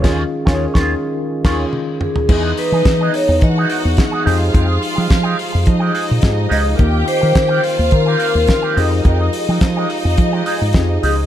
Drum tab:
CC |x---------x-----|x---------------|----------------|----------------|
HH |----------------|--o-x-o-x-o-x-o-|x-o-x-o-x-o-x-o-|x-o-x-o-x-o-x-o-|
SD |o--o-o----o-----|----o-------o---|----o-------o---|----o-------o---|
T1 |------------o---|----------------|----------------|----------------|
T2 |--------------o-|----------------|----------------|----------------|
FT |---------------o|----------------|----------------|----------------|
BD |o--o-o----o-----|o---o---o---o---|o---o---o---o---|o---o---o---o---|

CC |----------------|
HH |x-o-x-o-x-o-x-o-|
SD |----o-------o---|
T1 |----------------|
T2 |----------------|
FT |----------------|
BD |o---o---o---o---|